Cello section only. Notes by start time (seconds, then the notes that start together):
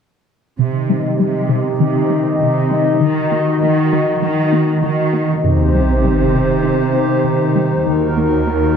0.60 C3
1.20 C3
1.80 C3
2.41 C3
3.02 D#3
3.62 D#3
4.23 D#3
4.83 D#3
5.43 C3
7.86 D#2